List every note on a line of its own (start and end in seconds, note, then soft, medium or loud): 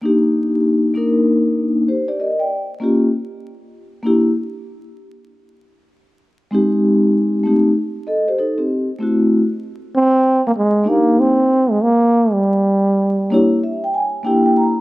0.02 0.91 A#3 medium
0.02 0.92 D4 medium
0.02 0.92 D#4 medium
0.02 0.93 G4 medium
0.94 1.84 A#3 medium
0.94 1.84 D4 medium
0.94 1.85 D#4 medium
0.94 1.58 A#4 medium
1.88 2.07 G4 soft
1.88 2.08 C5 medium
2.08 2.19 G4 medium
2.08 2.19 D5 medium
2.20 2.40 A#4 soft
2.20 2.39 D#5 medium
2.39 2.69 D5 soft
2.39 2.69 G5 medium
2.80 3.05 A#3 medium
2.80 3.06 C#4 medium
2.80 3.06 F4 medium
2.80 3.07 G4 medium
4.03 4.29 A#3 medium
4.03 4.29 D4 medium
4.03 4.30 E4 medium
4.03 4.31 G4 medium
6.51 7.40 G#3 medium
6.51 7.41 C4 medium
6.51 7.41 D#4 medium
6.51 7.42 G4 medium
7.43 7.69 A3 medium
7.43 7.70 C4 medium
7.43 7.70 D#4 medium
7.43 7.71 G4 medium
8.07 8.27 A4 medium
8.07 8.26 D#5 medium
8.28 8.38 G4 medium
8.28 8.38 C5 medium
8.38 8.58 D#4 medium
8.38 8.58 A4 medium
8.58 8.88 C4 medium
8.58 8.88 G4 medium
8.99 9.38 A3 medium
8.99 9.39 C4 medium
8.99 9.40 E4 medium
8.99 9.40 F#4 medium
9.95 10.42 C4 loud
10.47 10.51 A#3 medium
10.57 10.90 G#3 medium
10.84 11.32 A#3 medium
10.84 11.32 D4 medium
10.84 11.33 D#4 medium
10.84 11.34 G4 medium
10.89 11.21 A#3 medium
11.20 11.72 C4 medium
11.71 11.84 G#3 medium
11.82 12.34 A#3 medium
12.32 13.55 G3 medium
13.30 13.56 A#3 medium
13.30 13.57 D4 medium
13.30 13.58 E4 medium
13.30 13.58 G4 loud
13.30 13.61 C#5 medium
13.63 13.83 E5 medium
13.84 13.94 G5 medium
13.94 14.23 G#5 medium
14.23 14.72 A#3 medium
14.23 14.72 D4 medium
14.23 14.73 E4 medium
14.23 14.73 G4 medium
14.23 14.44 G5 medium
14.46 14.56 G5 medium
14.57 14.81 A#5 medium